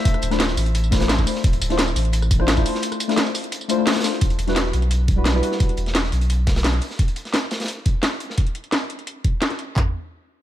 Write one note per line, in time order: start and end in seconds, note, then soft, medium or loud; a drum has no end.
0.00 0.28 A3 medium
0.00 0.29 D4 medium
0.00 0.29 E4 medium
0.00 0.30 F4 medium
0.00 0.31 C5 medium
0.00 3.82 E5 loud
0.05 kick loud
0.05 closed hi-hat medium
0.14 cross-stick soft
0.14 closed hi-hat soft
0.22 0.56 D1 medium
0.22 closed hi-hat medium
0.22 tambourine medium
0.30 0.42 A3 medium
0.30 0.42 D4 medium
0.30 0.42 E4 medium
0.30 0.42 F4 medium
0.30 0.43 C5 medium
0.30 cross-stick soft
0.30 snare medium
0.30 closed hi-hat soft
0.40 snare loud
0.40 closed hi-hat medium
0.40 closed hi-hat loud
0.49 snare soft
0.49 tambourine soft
0.57 1.25 A1 medium
0.57 closed hi-hat medium
0.57 open hi-hat medium
0.57 tambourine medium
0.66 closed hi-hat soft
0.75 closed hi-hat medium
0.84 tambourine soft
0.91 0.98 A3 medium
0.91 0.99 D4 medium
0.91 0.99 E4 medium
0.91 0.99 F4 medium
0.91 0.99 C5 loud
0.91 kick loud
0.91 snare loud
0.91 closed hi-hat medium
0.91 tambourine medium
1.00 1.24 A3 medium
1.00 1.24 D4 medium
1.00 1.25 E4 medium
1.00 1.25 F4 medium
1.00 1.25 C5 loud
1.00 snare loud
1.00 closed hi-hat medium
1.09 snare loud
1.09 closed hi-hat medium
1.18 kick medium
1.18 snare soft
1.18 closed hi-hat soft
1.18 tambourine soft
1.26 1.33 A3 medium
1.26 1.33 D4 medium
1.26 1.34 E4 medium
1.26 1.34 F4 medium
1.26 1.34 C5 medium
1.26 open hi-hat medium
1.26 tambourine medium
1.35 snare soft
1.44 1.60 D1 loud
1.44 kick loud
1.44 closed hi-hat medium
1.53 closed hi-hat soft
1.61 1.95 D1 loud
1.61 closed hi-hat medium
1.61 tambourine medium
1.69 1.76 A3 medium
1.69 1.77 D4 medium
1.69 1.77 E4 medium
1.69 1.77 F4 medium
1.69 1.77 C5 medium
1.69 snare soft
1.69 closed hi-hat soft
1.78 snare loud
1.78 closed hi-hat medium
1.78 closed hi-hat loud
1.88 tambourine soft
1.96 2.64 A1 medium
1.96 closed hi-hat medium
1.96 open hi-hat medium
1.96 tambourine medium
2.05 closed hi-hat soft
2.13 closed hi-hat medium
2.22 cross-stick soft
2.22 tambourine soft
2.31 kick loud
2.31 closed hi-hat medium
2.31 tambourine medium
2.39 2.54 A3 medium
2.39 2.55 D4 medium
2.39 2.55 E4 medium
2.39 2.55 F4 medium
2.39 2.55 C5 medium
2.39 cross-stick soft
2.48 snare loud
2.48 closed hi-hat loud
2.48 closed hi-hat medium
2.56 2.62 A3 loud
2.56 2.63 D4 medium
2.56 2.63 E4 medium
2.56 2.64 F4 medium
2.56 2.64 C5 loud
2.56 kick medium
2.56 tambourine soft
2.63 3.06 A3 medium
2.63 3.06 D4 medium
2.63 3.07 E4 medium
2.63 3.07 F4 medium
2.63 closed hi-hat medium
2.63 open hi-hat medium
2.63 tambourine medium
2.68 3.08 C5 medium
2.75 snare soft
2.82 closed hi-hat loud
2.82 closed hi-hat medium
2.92 cross-stick soft
2.92 closed hi-hat soft
2.92 tambourine soft
3.00 closed hi-hat medium
3.00 tambourine medium
3.08 3.19 A3 medium
3.08 3.19 D4 medium
3.08 3.20 E4 medium
3.08 3.20 F4 medium
3.08 3.20 C5 medium
3.08 cross-stick soft
3.08 snare medium
3.08 closed hi-hat soft
3.17 snare loud
3.17 closed hi-hat medium
3.17 closed hi-hat loud
3.25 snare soft
3.25 tambourine soft
3.35 closed hi-hat medium
3.35 open hi-hat medium
3.35 tambourine medium
3.43 closed hi-hat soft
3.52 closed hi-hat medium
3.52 closed hi-hat loud
3.61 tambourine soft
3.68 3.76 A3 medium
3.68 3.76 D4 medium
3.68 3.76 E4 medium
3.68 3.77 F4 medium
3.68 3.77 C5 loud
3.68 closed hi-hat medium
3.68 tambourine medium
3.77 4.01 A3 medium
3.77 4.02 D4 medium
3.77 4.02 E4 medium
3.77 4.02 F4 medium
3.77 4.03 C5 medium
3.87 snare medium
3.87 snare loud
3.87 closed hi-hat medium
3.91 snare medium
3.91 closed hi-hat medium
3.95 snare medium
3.95 snare soft
3.95 closed hi-hat soft
3.95 closed hi-hat medium
3.95 tambourine soft
4.00 4.10 A3 medium
4.00 4.11 D4 medium
4.00 4.11 E4 medium
4.00 snare medium
4.00 closed hi-hat medium
4.04 4.11 F4 medium
4.04 4.12 C5 medium
4.04 snare medium
4.04 closed hi-hat medium
4.04 open hi-hat medium
4.04 tambourine medium
4.13 snare soft
4.21 4.37 E1 medium
4.21 kick loud
4.21 closed hi-hat medium
4.30 closed hi-hat soft
4.39 4.72 E1 loud
4.39 closed hi-hat medium
4.47 4.54 G3 medium
4.47 4.54 D4 medium
4.47 4.54 E4 medium
4.47 4.55 F#4 medium
4.47 4.55 B4 medium
4.47 snare soft
4.47 closed hi-hat soft
4.56 snare loud
4.56 closed hi-hat medium
4.73 5.42 B1 medium
4.73 closed hi-hat medium
4.82 closed hi-hat soft
4.91 closed hi-hat medium
5.08 kick loud
5.08 closed hi-hat medium
5.16 5.32 G3 medium
5.16 5.32 D4 medium
5.16 5.32 E4 medium
5.16 5.33 F#4 medium
5.16 5.33 B4 medium
5.25 snare loud
5.25 closed hi-hat medium
5.33 5.40 G3 loud
5.33 5.41 D4 medium
5.33 5.41 E4 medium
5.33 5.41 F#4 medium
5.33 5.42 B4 loud
5.42 5.77 G3 medium
5.42 5.77 D4 medium
5.42 5.78 E4 medium
5.42 5.78 F#4 medium
5.42 5.78 B4 medium
5.42 closed hi-hat medium
5.52 snare soft
5.60 kick loud
5.60 closed hi-hat medium
5.69 closed hi-hat soft
5.77 6.11 E1 medium
5.77 closed hi-hat medium
5.86 snare soft
5.86 closed hi-hat soft
5.95 snare loud
5.95 closed hi-hat medium
6.04 snare soft
6.12 6.80 B1 medium
6.12 closed hi-hat medium
6.21 closed hi-hat soft
6.30 closed hi-hat medium
6.47 kick loud
6.47 snare loud
6.47 closed hi-hat medium
6.56 snare medium
6.56 closed hi-hat medium
6.64 snare loud
6.64 closed hi-hat medium
6.73 snare soft
6.73 closed hi-hat soft
6.81 closed hi-hat medium
6.81 open hi-hat medium
6.91 snare soft
6.99 kick loud
6.99 closed hi-hat medium
7.08 closed hi-hat soft
7.16 closed hi-hat medium
7.25 snare soft
7.25 closed hi-hat soft
7.33 snare loud
7.33 closed hi-hat medium
7.51 snare loud
7.51 closed hi-hat medium
7.60 snare medium
7.60 closed hi-hat medium
7.60 closed hi-hat soft
7.64 snare medium
7.64 closed hi-hat medium
7.68 closed hi-hat medium
7.86 kick loud
7.86 closed hi-hat medium
8.03 snare medium
8.03 snare loud
8.03 closed hi-hat medium
8.20 closed hi-hat medium
8.30 snare soft
8.38 kick loud
8.38 closed hi-hat medium
8.47 closed hi-hat soft
8.55 closed hi-hat medium
8.64 closed hi-hat soft
8.72 snare loud
8.72 closed hi-hat medium
8.90 closed hi-hat medium
8.99 closed hi-hat soft
9.07 closed hi-hat medium
9.24 kick loud
9.24 closed hi-hat medium
9.42 snare loud
9.42 closed hi-hat medium
9.51 snare soft
9.51 closed hi-hat soft
9.59 closed hi-hat medium
9.76 kick medium
9.76 clap medium
9.76 floor tom loud